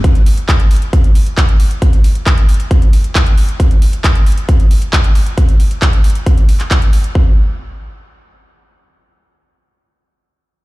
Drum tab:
HH |x-x-o-x-x-x-oxx-x-x-o-x-x-x-o-x-|x-x-o-x-x-x-oxx-x-x-o-x-x-x-o-x-|x-x-o-x-x-x-oxx-x-x-o-x-x-x-o-x-|x-x-o-x-x-x-oxx-x-x-o-x-x-x-o-x-|
CP |--------x---------------x-------|--------x---------------x-------|--------x---------------x-------|--------x-------------x-x-------|
BD |o-------o-------o-------o-------|o-------o-------o-------o-------|o-------o-------o-------o-------|o-------o-------o-------o-------|

HH |--------------------------------|--------------------------------|
CP |--------------------------------|--------------------------------|
BD |o-------------------------------|--------------------------------|